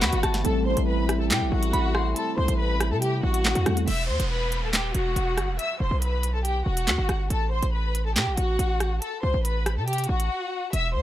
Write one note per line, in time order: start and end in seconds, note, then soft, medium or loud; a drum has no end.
0.00 0.12 E2 loud
0.00 0.40 E3 medium
0.00 0.41 E3 medium
0.00 0.40 G3 medium
0.00 3.84 G3 medium
0.00 0.41 B3 medium
0.00 0.41 F#4 medium
0.00 0.41 F#4 loud
0.00 0.41 F#4 medium
0.00 0.41 B4 medium
0.00 0.41 F#5 medium
0.00 0.22 B5 medium
0.00 snare loud
0.00 clap medium
0.13 0.23 G1 loud
0.13 closed hi-hat medium
0.23 0.44 G1 loud
0.23 0.43 A5 medium
0.23 cross-stick loud
0.23 closed hi-hat medium
0.34 snare medium
0.34 closed hi-hat medium
0.44 0.76 A1 loud
0.44 3.84 C3 medium
0.44 3.62 G3 medium
0.44 3.62 A3 medium
0.44 3.84 A3 medium
0.44 3.62 C4 medium
0.44 3.84 E4 medium
0.44 3.63 E4 medium
0.44 0.63 A4 medium
0.44 3.63 A4 medium
0.44 0.64 A5 medium
0.44 closed hi-hat medium
0.66 0.85 C5 medium
0.66 0.85 C6 medium
0.77 1.32 A1 loud
0.77 closed hi-hat medium
0.87 1.18 B4 medium
0.87 1.18 B5 medium
1.09 cross-stick loud
1.09 closed hi-hat medium
1.20 1.29 A4 medium
1.20 1.29 A5 medium
1.30 1.43 C3 loud
1.30 1.49 G4 medium
1.30 1.49 G5 medium
1.30 snare loud
1.30 clap loud
1.30 closed hi-hat medium
1.41 1.51 A1 loud
1.52 1.72 A1 loud
1.52 2.12 F#4 medium
1.52 2.13 F#5 medium
1.63 closed hi-hat medium
1.73 2.14 A1 loud
1.73 1.94 B5 medium
1.73 closed hi-hat medium
1.95 2.15 C6 medium
1.95 cross-stick loud
2.16 2.34 A4 medium
2.16 2.35 A5 medium
2.16 closed hi-hat medium
2.38 2.48 C2 loud
2.38 2.56 C5 medium
2.38 2.56 C6 medium
2.48 2.93 A1 loud
2.48 closed hi-hat medium
2.59 2.89 B4 medium
2.59 2.90 B5 medium
2.80 cross-stick loud
2.80 closed hi-hat medium
2.91 3.22 C3 loud
2.91 3.00 A4 medium
2.91 3.01 A5 medium
3.02 3.20 G4 loud
3.02 3.21 G5 medium
3.02 closed hi-hat medium
3.23 3.54 A1 loud
3.23 3.84 F#4 medium
3.23 3.84 F#5 medium
3.34 closed hi-hat medium
3.45 snare loud
3.45 clap medium
3.55 3.66 E2 loud
3.55 closed hi-hat medium
3.66 3.87 E2 loud
3.66 3.87 G3 medium
3.66 3.88 A3 medium
3.66 3.88 C4 soft
3.66 3.88 E4 soft
3.66 3.88 A4 medium
3.66 cross-stick loud
3.66 closed hi-hat medium
3.77 closed hi-hat medium
3.87 4.10 E1 loud
3.87 4.06 E5 medium
3.87 4.06 E6 medium
3.87 closed hi-hat medium
3.87 crash medium
3.87 downlifter medium
4.09 4.19 E2 loud
4.09 4.27 C5 medium
4.09 4.28 C6 medium
4.20 4.64 E1 loud
4.20 closed hi-hat medium
4.30 4.61 B4 medium
4.30 4.61 B5 medium
4.52 closed hi-hat medium
4.63 4.93 D#1 loud
4.63 4.72 A4 medium
4.63 4.72 A5 medium
4.73 4.92 G4 medium
4.73 4.92 G5 medium
4.73 snare loud
4.73 clap medium
4.73 closed hi-hat medium
4.95 5.15 E1 loud
4.95 5.55 F#4 medium
4.95 5.56 F#5 medium
4.95 closed hi-hat medium
5.16 5.39 E1 loud
5.16 closed hi-hat medium
5.37 5.50 G1 loud
5.37 cross-stick loud
5.37 closed hi-hat medium
5.48 5.58 E1 loud
5.59 5.77 E5 medium
5.59 5.78 E6 medium
5.59 closed hi-hat medium
5.80 5.90 E1 loud
5.80 5.99 C5 medium
5.80 5.99 C6 medium
5.91 6.63 B1 loud
6.01 6.32 B4 medium
6.01 6.32 B5 medium
6.01 closed hi-hat medium
6.23 closed hi-hat medium
6.33 6.43 A4 medium
6.33 6.43 A5 medium
6.45 6.63 G4 medium
6.45 6.63 G5 medium
6.45 closed hi-hat medium
6.66 6.89 E1 loud
6.66 7.27 F#4 loud
6.66 7.27 F#5 medium
6.77 closed hi-hat medium
6.87 6.98 E2 loud
6.87 snare loud
6.87 clap medium
6.87 closed hi-hat medium
6.98 7.09 G1 loud
7.09 7.30 G1 loud
7.09 cross-stick loud
7.09 closed hi-hat medium
7.30 7.61 A1 loud
7.30 7.49 A4 medium
7.30 7.49 A5 medium
7.30 closed hi-hat medium
7.52 7.70 C5 medium
7.52 7.71 C6 medium
7.63 8.18 A1 loud
7.63 closed hi-hat medium
7.73 8.03 B4 medium
7.73 8.04 B5 medium
7.95 closed hi-hat medium
8.05 8.15 A4 medium
8.05 8.15 A5 medium
8.16 8.28 C3 loud
8.16 8.34 G4 medium
8.16 8.35 G5 medium
8.16 snare loud
8.16 clap medium
8.16 closed hi-hat medium
8.27 8.37 A1 loud
8.37 8.58 A1 loud
8.37 8.98 F#4 medium
8.37 8.98 F#5 medium
8.37 closed hi-hat medium
8.59 9.00 A1 loud
8.59 closed hi-hat medium
8.80 cross-stick loud
8.80 closed hi-hat medium
9.02 9.20 A4 medium
9.02 9.21 A5 medium
9.02 closed hi-hat medium
9.23 9.34 C2 loud
9.23 9.42 C5 medium
9.23 9.42 C6 medium
9.34 9.78 A1 loud
9.45 9.75 B4 medium
9.45 9.75 B5 medium
9.45 closed hi-hat medium
9.66 cross-stick loud
9.66 closed hi-hat medium
9.77 10.07 C3 loud
9.77 9.86 A4 medium
9.77 9.87 A5 medium
9.88 10.06 G4 loud
9.88 10.06 G5 medium
9.88 closed hi-hat medium
9.93 closed hi-hat medium
9.98 closed hi-hat medium
10.04 closed hi-hat medium
10.09 10.30 A1 loud
10.09 10.70 F#4 medium
10.09 10.70 F#5 medium
10.20 closed hi-hat medium
10.73 10.96 E1 loud
10.73 10.92 E5 medium
10.73 10.92 E6 medium
10.73 closed hi-hat medium
10.95 11.02 E2 loud
10.95 11.02 C5 medium
10.95 11.02 C6 medium